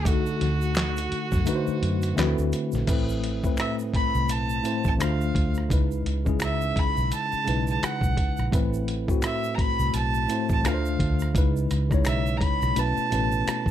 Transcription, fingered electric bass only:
0.41 1.07 D2 medium
1.12 muted fingered electric bass stroke soft
1.33 1.45 F#2 medium
1.68 muted fingered electric bass stroke medium
1.82 2.14 F#2 medium
2.18 2.36 D2 medium
2.38 2.51 D2 medium
2.73 2.86 A#1 medium
2.88 3.55 A1 medium
3.94 muted fingered electric bass stroke soft
4.15 4.30 C2 medium
4.30 4.61 B1 medium
4.86 4.98 A1 medium
5.00 5.32 D2 medium
5.36 5.67 D2 medium
5.71 6.02 C#2 loud
6.06 6.72 C#2 medium
6.77 muted fingered electric bass stroke soft
6.98 7.10 B1 medium
7.33 muted fingered electric bass stroke soft
7.47 7.79 B1 medium
7.83 muted fingered electric bass stroke soft
8.02 8.15 B1 medium
8.39 8.51 A#1 medium
8.53 9.19 A1 loud
9.59 muted fingered electric bass stroke medium
9.80 9.92 C2 medium
9.94 10.26 B1 loud
10.50 10.63 A1 medium
10.65 10.97 D2 loud
11.00 11.32 D2 medium
11.35 11.67 C#2 loud
11.71 12.03 C#2 medium
12.06 12.38 B1 medium
12.62 12.75 B1 medium
12.77 12.95 B1 medium
13.12 13.44 A1 medium
13.47 muted fingered electric bass stroke soft
13.66 13.71 A1 medium

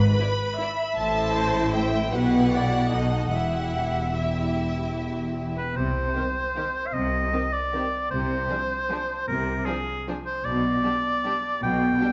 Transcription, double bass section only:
0.00 0.12 G#1 medium
0.96 2.08 A1 medium
2.11 2.90 B1 medium
2.91 3.30 B1 soft
3.30 5.54 E1 soft
5.76 6.09 C2 medium
6.94 7.26 C2 medium
8.11 8.43 C2 medium
9.28 9.60 C2 medium
10.45 10.77 B1 medium
11.62 11.94 B1 medium

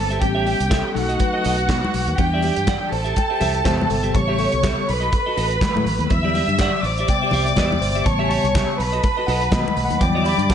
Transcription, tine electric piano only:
0.00 0.18 G3 medium
0.00 0.19 C4 medium
0.00 0.24 A4 medium
0.00 0.18 B4 soft
0.00 0.25 C5 medium
0.21 0.56 G3 soft
0.21 0.56 B3 soft
0.21 0.56 C#4 medium
0.21 0.73 G4 medium
0.71 0.95 A4 medium
0.95 1.29 F#3 medium
0.95 1.30 A3 medium
0.95 1.30 D#4 medium
0.95 1.07 A4 medium
1.20 1.90 B4 medium
2.19 2.89 E3 medium
2.19 2.89 G3 soft
2.19 2.89 D4 medium
2.68 2.93 D5 medium
2.92 3.03 C5 medium
3.17 3.42 G5 medium
3.41 3.66 E5 medium
3.65 3.99 C3 medium
3.65 3.99 G3 medium
3.65 4.00 B3 medium
3.65 3.91 C5 loud
3.91 4.16 A4 medium
4.15 4.49 C#3 medium
4.15 4.49 G3 medium
4.15 4.49 B3 medium
4.15 4.41 G4 medium
4.39 5.09 A4 medium
5.62 5.96 D#3 medium
5.62 5.96 F#3 medium
5.62 5.96 A3 medium
6.10 6.80 D3 medium
6.10 6.80 F#3 medium
6.10 6.81 G3 medium
6.61 6.85 D5 medium
6.86 7.10 C5 medium
7.07 7.41 C3 medium
7.07 7.42 G3 soft
7.07 7.42 B3 medium
7.07 7.34 G5 medium
7.35 7.59 E5 medium
7.58 7.83 D5 loud
7.81 8.07 C5 medium
8.05 8.75 C#3 medium
8.05 8.76 G3 medium
8.05 8.76 B3 medium
8.05 8.25 A5 loud
8.23 8.30 G#5 medium
8.29 8.99 A5 loud
9.27 9.53 F#5 medium
9.51 9.85 D#3 medium
9.51 9.86 F#3 medium
9.51 9.86 A3 medium
9.51 9.86 D#5 loud
9.85 10.02 F#5 loud
10.00 10.34 D3 medium
10.00 10.34 F#3 medium
10.00 10.35 G3 medium
10.00 10.24 G5 loud
10.26 10.51 B5 loud
10.50 10.54 A5 loud

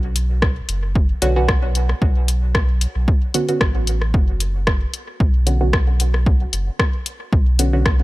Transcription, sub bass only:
0.00 0.61 B1 medium
0.69 1.14 F#1 medium
1.22 1.94 B1 loud
2.02 2.87 B1 medium
2.96 3.11 B1 medium
3.61 4.13 A1 medium
4.14 4.86 F#1 loud
5.20 6.45 B1 loud
6.53 6.70 F#1 medium
7.33 8.03 B1 loud

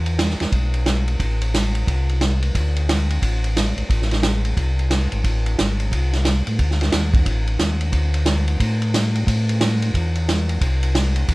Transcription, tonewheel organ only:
0.00 0.36 E2 medium
0.40 0.47 E2 soft
0.52 1.17 B1 medium
1.20 1.84 A1 medium
1.87 2.52 C2 medium
2.55 3.19 D2 medium
3.22 3.73 A1 medium
3.77 3.83 A1 soft
3.89 4.54 A1 medium
4.57 5.08 C2 medium
5.13 5.24 G#1 medium
5.24 5.56 A1 medium
5.59 5.90 G#1 medium
5.91 6.43 C2 medium
6.47 6.59 A2 medium
6.59 6.91 D2 medium
6.93 7.24 D#2 medium
7.25 7.57 A1 medium
7.60 7.91 D#2 medium
7.92 8.57 D2 medium
8.60 9.24 A2 medium
9.27 9.91 A2 medium
9.94 10.58 E2 medium
10.61 11.25 C2 medium
11.28 11.34 E2 medium

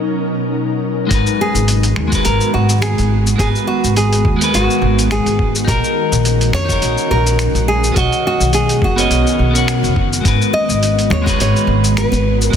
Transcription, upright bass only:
1.11 1.23 G#1 loud
1.54 1.91 G#1 medium
1.97 2.19 D#2 loud
2.25 2.37 G#1 medium
2.54 2.92 G#1 loud
2.98 3.35 G#1 medium
3.39 3.51 G#1 loud
3.84 4.20 G#1 loud
4.25 4.47 D#2 loud
4.53 4.65 G#1 medium
4.82 5.20 G#1 loud
5.26 5.63 G#1 medium
5.67 5.80 A#1 medium
6.12 6.49 A#1 loud
6.53 6.76 F2 loud
6.82 6.94 A#1 medium
7.11 7.49 A#1 loud
7.54 7.91 A#1 medium
7.96 8.08 B1 loud
8.40 8.77 B1 medium
8.82 9.04 F#1 loud
9.10 9.22 B1 medium
9.39 9.85 B1 medium
9.83 10.20 F#1 medium
10.25 10.37 G#1 loud
10.69 11.05 G#1 medium
11.10 11.33 D#2 loud
11.39 11.51 G#1 medium
11.67 12.06 G#1 loud
12.12 12.48 G#1 medium
12.53 12.56 G#1 medium

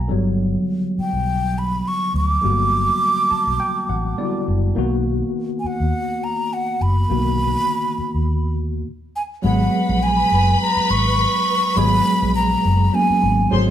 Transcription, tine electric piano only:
0.00 0.12 F#5 medium
0.00 0.12 G#5 medium
0.00 0.12 A#5 medium
0.08 2.39 D3 medium
0.08 2.40 F#3 medium
0.08 2.39 G3 medium
0.08 2.39 B3 medium
2.41 4.14 D3 medium
2.41 4.15 G3 medium
2.41 2.51 A#3 soft
2.41 4.16 F#4 medium
2.50 4.17 B3 soft
3.30 3.58 A5 medium
3.60 3.87 G5 medium
3.89 4.17 F#5 medium
4.18 4.76 D3 medium
4.18 4.77 G3 medium
4.18 4.76 B3 medium
4.18 4.26 E4 medium
4.18 4.73 D5 medium
4.25 4.77 F#4 medium
4.75 7.06 D#3 medium
4.75 7.06 A#3 medium
4.75 7.07 B3 medium
4.75 7.07 F#4 medium
7.08 7.17 D3 medium
7.08 8.82 A#3 soft
7.08 8.82 B3 medium
7.08 8.83 F#4 medium
7.15 8.84 D#3 medium
9.42 11.72 F#3 medium
9.42 11.73 G#3 medium
9.42 11.73 B3 medium
9.42 11.74 G#4 medium
11.76 12.91 F#3 medium
11.76 12.91 G#3 medium
11.76 12.92 B3 medium
11.76 12.92 G#4 medium
12.93 13.50 F#3 soft
12.93 13.52 A#3 soft
12.93 13.52 B3 soft
12.93 13.52 C#4 medium
13.51 13.71 F#3 medium
13.51 13.71 A3 medium
13.51 13.71 C4 medium
13.51 13.71 G#4 medium

